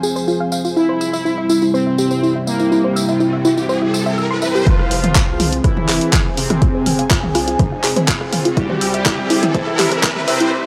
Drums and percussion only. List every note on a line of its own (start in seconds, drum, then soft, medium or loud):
0.03 tambourine medium
0.16 tambourine soft
0.28 tambourine soft
0.52 tambourine medium
0.65 tambourine soft
0.77 tambourine soft
1.01 tambourine medium
1.13 tambourine soft
1.26 tambourine soft
1.49 tambourine medium
1.62 tambourine soft
1.75 tambourine soft
1.98 tambourine medium
2.11 tambourine soft
2.23 tambourine soft
2.47 tambourine medium
2.59 tambourine soft
2.72 tambourine soft
2.96 tambourine medium
3.08 tambourine soft
3.20 tambourine soft
3.45 tambourine medium
3.57 tambourine soft
3.69 tambourine soft
3.94 tambourine medium
4.06 tambourine soft
4.18 tambourine soft
4.42 tambourine medium
4.56 tambourine soft
4.67 kick loud
4.67 closed hi-hat medium
4.67 mid tom medium
4.79 cross-stick soft
4.91 open hi-hat loud
5.04 closed hi-hat medium
5.04 mid tom medium
5.15 kick loud
5.15 clap loud
5.15 closed hi-hat medium
5.40 open hi-hat medium
5.40 mid tom medium
5.53 closed hi-hat medium
5.64 kick loud
5.64 cross-stick soft
5.64 closed hi-hat medium
5.77 mid tom medium
5.89 clap medium
5.89 open hi-hat loud
6.01 closed hi-hat medium
6.13 kick loud
6.13 clap loud
6.13 closed hi-hat medium
6.13 mid tom medium
6.37 open hi-hat medium
6.50 cross-stick soft
6.50 closed hi-hat medium
6.50 mid tom medium
6.62 kick loud
6.62 closed hi-hat medium
6.86 open hi-hat loud
6.86 mid tom medium
6.99 closed hi-hat medium
7.11 kick loud
7.11 clap loud
7.11 closed hi-hat medium
7.23 mid tom medium
7.35 cross-stick soft
7.35 open hi-hat medium
7.48 closed hi-hat medium
7.59 kick loud
7.59 closed hi-hat medium
7.59 mid tom medium
7.84 clap medium
7.84 open hi-hat loud
7.96 closed hi-hat medium
7.96 mid tom medium
8.08 kick loud
8.08 clap loud
8.08 closed hi-hat medium
8.21 cross-stick soft
8.33 open hi-hat medium
8.33 mid tom medium
8.45 closed hi-hat medium
8.57 kick loud
8.57 closed hi-hat medium
8.70 mid tom medium
8.81 open hi-hat loud
8.94 closed hi-hat medium
9.06 kick loud
9.06 cross-stick soft
9.06 clap loud
9.06 closed hi-hat medium
9.06 mid tom medium
9.30 open hi-hat loud
9.43 closed hi-hat medium
9.43 mid tom medium
9.54 kick loud
9.54 closed hi-hat medium
9.79 clap medium
9.79 open hi-hat loud
9.79 mid tom medium
9.92 cross-stick soft
9.92 closed hi-hat medium
10.03 kick loud
10.03 clap loud
10.03 closed hi-hat medium
10.16 mid tom medium
10.28 open hi-hat medium
10.40 closed hi-hat medium